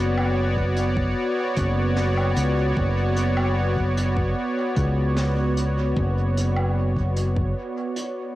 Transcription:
Already playing: fingered electric bass F#1, analog synth pad B3 F#4 C#5 D5
0.18 low woodblock
0.57 kick
0.76 closed hi-hat
0.97 kick
1.56 fingered electric bass F#1, kick, closed hi-hat
1.96 snare
2.17 low woodblock
2.36 fingered electric bass C#2, closed hi-hat
2.77 fingered electric bass F#1, kick
3.17 closed hi-hat
3.37 low woodblock
3.77 kick
3.97 closed hi-hat
4.17 kick
4.76 fingered electric bass C#2, kick, closed hi-hat
5.17 snare
5.57 closed hi-hat
5.97 fingered electric bass F#1, kick
6.37 closed hi-hat
6.56 low woodblock
6.97 kick
7.16 closed hi-hat
7.37 kick
7.96 closed hi-hat

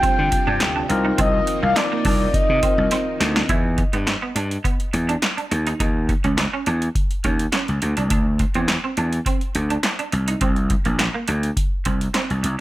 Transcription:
Already playing: string machine C3 F3 G3 F4, tine electric piano C4 D4 F4 G4, soft synth lead G5
0.03 clean electric guitar C4, muted slap bass stroke, kick, closed hi-hat
0.18 slap bass D3
0.32 muted clean electric guitar stroke, kick, closed hi-hat
0.47 slap bass G2, clean electric guitar D4
0.60 slap bass D2, snare, clap, closed hi-hat
0.76 clean electric guitar D4
0.89 slap bass C2, string machine D#3 A#3 D#4, tine electric piano C4 D#4 F4 A#4, muted clean electric guitar stroke, closed hi-hat
1.05 clean electric guitar D#4
1.18 slap bass C2, clean electric guitar C4, soft synth lead D#5, kick, closed hi-hat
1.47 muted clean electric guitar stroke, closed hi-hat
1.63 slap bass C2, clean electric guitar A#3, soft synth lead F5
1.76 soft synth lead D5, muted clean electric guitar stroke, snare, clap, closed hi-hat
1.92 clean electric guitar A#3
2.05 slap bass C2, clean electric guitar D4, kick, open hi-hat
2.34 soft synth lead D#5, muted slap bass stroke, kick, closed hi-hat
2.49 slap bass C3
2.62 tine electric piano C4 D#4 F4 A#4, clean electric guitar C4, kick, closed hi-hat
2.78 slap bass C2
2.91 clean electric guitar C4, snare, closed hi-hat
3.20 slap bass D2, muted clean electric guitar stroke, snare, closed hi-hat
3.36 clean electric guitar D4, snare
3.49 slap bass E2, clean electric guitar E4, kick, closed hi-hat
3.78 muted clean electric guitar stroke, kick, closed hi-hat
3.93 slap bass G2, clean electric guitar B3, closed hi-hat
4.07 muted clean electric guitar stroke, snare, clap, closed hi-hat
4.22 clean electric guitar B3
4.35 slap bass G2, clean electric guitar D4, closed hi-hat
4.51 closed hi-hat
4.64 clean electric guitar B3, kick, closed hi-hat
4.80 closed hi-hat
4.93 slap bass E2, muted clean electric guitar stroke, closed hi-hat
5.09 clean electric guitar D4, closed hi-hat
5.22 snare, clap, closed hi-hat
5.37 clean electric guitar D4, closed hi-hat
5.51 slap bass D#2, muted clean electric guitar stroke, closed hi-hat
5.67 clean electric guitar D#4, closed hi-hat
5.80 slap bass D#2, clean electric guitar D#4, kick, closed hi-hat
6.09 muted clean electric guitar stroke, kick, closed hi-hat
6.24 slap bass C#2, clean electric guitar C#4, closed hi-hat
6.38 muted clean electric guitar stroke, snare, clap, closed hi-hat
6.53 clean electric guitar C#4
6.66 slap bass E2, clean electric guitar D4, closed hi-hat
6.82 closed hi-hat
6.95 kick, closed hi-hat
7.11 closed hi-hat
7.24 slap bass D#2, clean electric guitar C#4, kick, closed hi-hat
7.39 closed hi-hat
7.52 clean electric guitar C#4, snare, clap, closed hi-hat
7.68 slap bass C#2, closed hi-hat
7.82 slap bass D2, muted clean electric guitar stroke, closed hi-hat
7.97 slap bass C2, clean electric guitar D4, closed hi-hat
8.10 slap bass D2, clean electric guitar D4, kick, closed hi-hat
8.39 muted clean electric guitar stroke, kick, closed hi-hat
8.54 slap bass E2, clean electric guitar C4, closed hi-hat
8.68 muted clean electric guitar stroke, snare, clap, closed hi-hat
8.84 clean electric guitar C4
8.97 slap bass E2, clean electric guitar D4, closed hi-hat
9.13 closed hi-hat
9.26 clean electric guitar C4, kick, closed hi-hat
9.41 closed hi-hat
9.55 slap bass D2, muted clean electric guitar stroke, closed hi-hat
9.70 clean electric guitar D4, closed hi-hat
9.83 snare, clap, closed hi-hat
9.99 clean electric guitar D4, closed hi-hat
10.12 slap bass C2, muted clean electric guitar stroke, closed hi-hat
10.28 clean electric guitar D#4, closed hi-hat
10.41 slap bass C2, clean electric guitar C4, kick, closed hi-hat
10.56 closed hi-hat
10.70 muted clean electric guitar stroke, kick, closed hi-hat
10.85 slap bass A#1, clean electric guitar A#3, closed hi-hat
10.99 muted clean electric guitar stroke, snare, clap, closed hi-hat
11.14 clean electric guitar A#3
11.28 slap bass D2, clean electric guitar D4, closed hi-hat
11.43 closed hi-hat
11.57 kick, closed hi-hat
11.85 slap bass C2, clean electric guitar C4, kick, closed hi-hat
12.01 closed hi-hat
12.14 clean electric guitar C4, snare, clap, closed hi-hat
12.30 slap bass C2, closed hi-hat
12.43 slap bass C2, muted clean electric guitar stroke, closed hi-hat

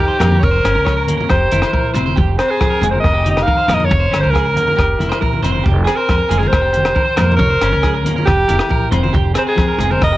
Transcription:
Already playing: clean electric guitar D#4, alto saxophone G4
0.00 clean electric guitar D#3
0.08 clean electric guitar C5
0.19 upright bass F2, clean electric guitar A#3 A#4, cross-stick, closed hi-hat, low conga, low agogo
0.32 high conga
0.40 upright bass F1, clean electric guitar F2 C#5, alto saxophone A#4, kick
0.51 clean electric guitar C5
0.64 upright bass G1, clean electric guitar C#4, cross-stick, closed hi-hat, low agogo
0.74 upright bass C#2, clean electric guitar A#4
0.85 clean electric guitar F3 C#5, kick, cross-stick, low agogo
0.97 clean electric guitar A#4
1.08 upright bass D#2, clean electric guitar A#3, closed hi-hat, high conga, low conga
1.17 clean electric guitar A#4, high conga
1.29 upright bass F1, clean electric guitar F2 G4, alto saxophone C5, kick, cross-stick, low agogo
1.51 upright bass F1, clean electric guitar E4 A#4, closed hi-hat, high conga
1.62 clean electric guitar C5, cross-stick, low agogo
1.72 upright bass A#1, clean electric guitar E3 A#4, kick
1.94 upright bass F1, clean electric guitar C4 C5, closed hi-hat, low conga, low agogo
2.06 clean electric guitar C5, high conga
2.16 upright bass F1, clean electric guitar F2 G4, kick
2.38 clean electric guitar C4, alto saxophone C5, muted clean electric guitar stroke, cross-stick, closed hi-hat, low agogo
2.48 alto saxophone G#4, clean electric guitar C5
2.61 upright bass F2, clean electric guitar F3, kick, cross-stick, low agogo
2.70 clean electric guitar A#4
2.81 upright bass F1, clean electric guitar G#3 G#4, closed hi-hat, high conga, low conga
2.91 clean electric guitar A#4, alto saxophone C5
2.95 high conga
3.00 alto saxophone D#5
3.04 upright bass F1, kick, cross-stick, low agogo
3.14 clean electric guitar G4
3.24 clean electric guitar D#4 G4, closed hi-hat, high conga
3.31 alto saxophone D#5
3.37 cross-stick, low agogo
3.42 alto saxophone F5
3.46 upright bass F2, clean electric guitar D#3 A#4, kick
3.58 clean electric guitar C5
3.68 upright bass F2, clean electric guitar A#3 A#4, cross-stick, closed hi-hat, low conga, low agogo
3.74 alto saxophone D#5
3.80 high conga
3.85 alto saxophone C#5
3.90 upright bass F1, clean electric guitar F2 C#5, kick
4.00 clean electric guitar C5
4.11 upright bass G1, clean electric guitar C#4, cross-stick, closed hi-hat, low agogo
4.20 upright bass C#2, clean electric guitar A#4, alto saxophone C5
4.30 clean electric guitar F3 G#4, alto saxophone A#4
4.35 kick, cross-stick, low agogo
4.45 clean electric guitar A#4
4.55 upright bass D#2, clean electric guitar A#3, closed hi-hat, high conga, low conga
4.67 clean electric guitar A#4, high conga
4.77 upright bass F1, clean electric guitar F2 G4, kick, cross-stick, low agogo
4.99 upright bass F1, clean electric guitar E4, closed hi-hat, high conga
5.09 clean electric guitar C5, cross-stick, low agogo
5.20 upright bass A#1, clean electric guitar E3 A#4, kick
5.33 high conga
5.43 upright bass F1, clean electric guitar C4 C5, closed hi-hat, low conga, low agogo
5.52 clean electric guitar C5, high conga
5.64 upright bass F1, clean electric guitar F2 G4, kick
5.84 clean electric guitar C4 G#4, alto saxophone G#4, cross-stick, closed hi-hat, low agogo
5.96 alto saxophone A#4, clean electric guitar C5
6.09 upright bass F2, kick, cross-stick, low agogo
6.18 clean electric guitar A#4
6.29 upright bass F1, clean electric guitar G#3 G#4, closed hi-hat, high conga, low conga
6.38 alto saxophone G#4, clean electric guitar A#4
6.43 high conga
6.48 alto saxophone C5
6.53 upright bass F1, clean electric guitar F2, kick, cross-stick, low agogo
6.61 clean electric guitar G4
6.73 clean electric guitar G4, muted clean electric guitar stroke, closed hi-hat
6.77 high conga
6.85 cross-stick, low agogo
6.95 upright bass F2, clean electric guitar D#3 A#4, kick
7.05 clean electric guitar C5
7.16 upright bass F2, clean electric guitar A#3 A#4, cross-stick, closed hi-hat, low agogo
7.20 low conga
7.32 high conga
7.36 upright bass F1, clean electric guitar F2 C#5, alto saxophone A#4, kick
7.50 clean electric guitar C5
7.61 upright bass G1, clean electric guitar C#4, cross-stick, closed hi-hat, low agogo
7.71 upright bass C#2, clean electric guitar A#4
7.82 clean electric guitar F3 G#4, kick, cross-stick, low agogo
7.94 clean electric guitar A#4
8.04 upright bass D#2, clean electric guitar A#3, closed hi-hat, high conga, low conga
8.16 clean electric guitar A#4, high conga
8.25 upright bass F1, clean electric guitar F2 G4, alto saxophone G4, kick, cross-stick, low agogo
8.48 upright bass F1, clean electric guitar E4 A#4, closed hi-hat, high conga
8.59 muted clean electric guitar stroke, cross-stick, low agogo
8.69 upright bass A#1, clean electric guitar E3 A#4, kick
8.91 upright bass F1, clean electric guitar C4 C5, closed hi-hat, low conga, low agogo
9.03 clean electric guitar C5, high conga
9.13 upright bass F1, clean electric guitar F2 G4, kick
9.34 clean electric guitar C4 G#4, alto saxophone C5, cross-stick, closed hi-hat, low agogo
9.47 alto saxophone G#4, clean electric guitar C5
9.56 upright bass F2, clean electric guitar F3, kick, cross-stick, low agogo
9.68 clean electric guitar A#4
9.78 upright bass F1, clean electric guitar G#3 G#4, closed hi-hat, high conga, low conga
9.90 clean electric guitar A#4, alto saxophone C5, high conga
10.01 upright bass F1, clean electric guitar F2, alto saxophone D#5, kick, cross-stick, low agogo
10.12 clean electric guitar G4

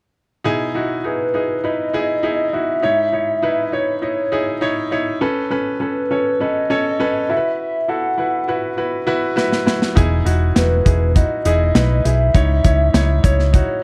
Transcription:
0.44 upright piano B2 D#4 E4 G#4
0.74 upright piano D#4 E4 F#4
1.04 upright piano D#4 E4 G#4, soft synth lead B4
1.34 upright piano D#4 E4 G#4
1.64 upright piano D#4 E4 B4, soft synth lead D#5
1.93 upright piano D#4 E4 G#4
2.23 upright piano D#4 E4 G#4
2.53 upright piano D#4 E4 F#4, soft synth lead E5
2.82 upright piano G#2 D#4 E4 C#5
3.12 upright piano D#4 E4 C#5
3.42 upright piano D#4 E4 B4
3.72 upright piano D#4 E4 C#5, soft synth lead C#5
4.02 upright piano D#4 E4 D#5, soft synth lead C#5
4.32 upright piano D#4 E4 G#4
4.61 upright piano D#4 E4 C#5
4.91 upright piano D#4 E4 C#5
5.21 upright piano C#4 A4 B4
5.50 upright piano C#4 A4 B4
5.80 upright piano C#4 A4 B4, soft synth lead B4
6.11 upright piano C#4 A4 C#5
6.40 upright piano C#4 A4 B4, soft synth lead D#5
6.70 upright piano C#4 A4 C#5
7.00 upright piano C#4 A4 B4
7.29 upright piano E4 F#4 A4, soft synth lead E5
7.37 upright piano B4
7.60 soft synth lead E5
7.88 upright piano E4 F#4 A4, soft synth lead F#5
8.18 upright piano E4 F#4 B4
8.48 upright piano E4 F#4 B4
8.77 upright piano E4 F#4 B4
9.07 upright piano E4 F#4 B4
9.36 upright piano E4 F#4 B4, snare
9.52 snare
9.66 upright piano E4 F#4 B4, snare
9.82 snare
9.95 fingered electric bass E1, upright piano B2 D#4 E4 G#4, kick, closed hi-hat
10.25 fingered electric bass E1, upright piano D#4 E4 F#4, closed hi-hat
10.55 fingered electric bass E1, upright piano D#4 E4 F#4, soft synth lead B4, snare, closed hi-hat
10.85 fingered electric bass E1, upright piano D#4 E4 G#4, kick, closed hi-hat
11.15 upright piano D#4 E4 F#4, soft synth lead D#5, kick, closed hi-hat
11.45 fingered electric bass E1, upright piano D#4 E4 G#4, closed hi-hat
11.75 fingered electric bass B1, upright piano D#4 E4 B4, snare, closed hi-hat
12.04 fingered electric bass B1, upright piano D#4 E4 G#4, soft synth lead E5, closed hi-hat
12.34 fingered electric bass C#2, upright piano G#2 D#4 E4 C#5, kick, closed hi-hat
12.64 fingered electric bass C#2, upright piano D#4 E4 C#5, kick, closed hi-hat
12.93 fingered electric bass C#2, upright piano D#4 E4 C#5, snare, closed hi-hat
13.23 fingered electric bass C#2, upright piano D#4 E4 C#5, soft synth lead C#5, kick, closed hi-hat
13.39 snare
13.53 upright piano D#4 E4 F#4, soft synth lead C#5, kick, closed hi-hat

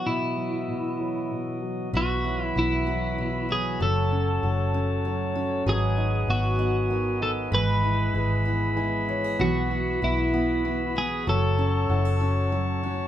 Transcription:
Already playing: grand piano B2 F#3, tonewheel organ B2 E3 F#3 F#4
0.06 grand piano B2, clean electric guitar E4, tonewheel organ D#5
0.37 grand piano F#3
0.68 grand piano B2
1.00 grand piano F#3
1.31 grand piano B2
1.62 grand piano F#3
1.93 fingered electric bass B1, grand piano B2, steel-string acoustic guitar E3, tonewheel organ F#4 B4 E5 B5, clean electric guitar F#4
2.24 grand piano F#3, steel-string acoustic guitar E4
2.45 clean electric guitar E4
2.55 fingered electric bass B1, grand piano B3, clean electric guitar E4, steel-string acoustic guitar F#4
2.87 grand piano F#3, steel-string acoustic guitar B3
3.18 grand piano B2, steel-string acoustic guitar E4
3.49 grand piano F#3, steel-string acoustic guitar F#4, clean electric guitar G#4
3.80 fingered electric bass F#1, steel-string acoustic guitar F#3, grand piano F#3, tonewheel organ A4 C#5 A5, clean electric guitar A4
4.12 steel-string acoustic guitar C#4, grand piano C#4
4.43 fingered electric bass F#1, grand piano F#4, steel-string acoustic guitar A4
4.74 steel-string acoustic guitar A3, grand piano C#4
5.05 grand piano F#3, steel-string acoustic guitar C#4
5.35 grand piano C#4, steel-string acoustic guitar A4
5.66 fingered electric bass G#1, steel-string acoustic guitar F#3, grand piano F#3, tonewheel organ F#4 B4 D#5 G#5, clean electric guitar G#4
5.97 steel-string acoustic guitar D#4, grand piano D#4
6.28 fingered electric bass G#1, grand piano B3, clean electric guitar F#4, steel-string acoustic guitar G#4
6.59 steel-string acoustic guitar B3, grand piano D#4
6.89 grand piano D#3, steel-string acoustic guitar D#4
7.20 grand piano D#4, clean electric guitar A4
7.51 fingered electric bass G#1, steel-string acoustic guitar E3, grand piano G#3, tonewheel organ G#4 B4 E5 B5, clean electric guitar B4
7.83 grand piano E4, steel-string acoustic guitar E4
8.14 fingered electric bass G#1, grand piano G#4, steel-string acoustic guitar G#4
8.45 steel-string acoustic guitar B3, grand piano E4
8.76 grand piano G#3 G#5, steel-string acoustic guitar E4
9.08 grand piano E4 C#5, steel-string acoustic guitar F#4
9.24 steel-string acoustic guitar G#4
9.39 fingered electric bass B1, steel-string acoustic guitar E3, grand piano B3, tonewheel organ F#4 B5, clean electric guitar F#4
9.70 grand piano B3, steel-string acoustic guitar E4
10.02 fingered electric bass B1, grand piano B3, clean electric guitar E4, steel-string acoustic guitar F#4
10.33 steel-string acoustic guitar B3, grand piano B3
10.65 grand piano B3, steel-string acoustic guitar E4
10.96 grand piano B3, steel-string acoustic guitar F#4, clean electric guitar G#4
11.27 fingered electric bass F#1, grand piano F#3, steel-string acoustic guitar F#3, clean electric guitar A4, tonewheel organ C#5 A5 C#6
11.58 grand piano C#4, steel-string acoustic guitar C#4
11.89 fingered electric bass F#1, steel-string acoustic guitar E4, grand piano F#4
12.05 steel-string acoustic guitar F#4
12.20 steel-string acoustic guitar A3, grand piano C#4
12.52 grand piano F#3, steel-string acoustic guitar C#4
12.83 grand piano C#4, steel-string acoustic guitar F#4

